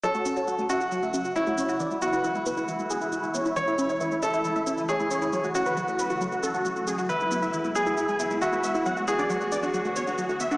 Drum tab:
SH |xxxxxxxxxxxxxxxx|xxxxxxxxxxxxxxxx|xxxxxxxxxxxxxxxx|xxxxxxxxxxxxxxxx|

SH |xxxxxxxxxxxxxxxx|xxxxxxxxxxxxxxxx|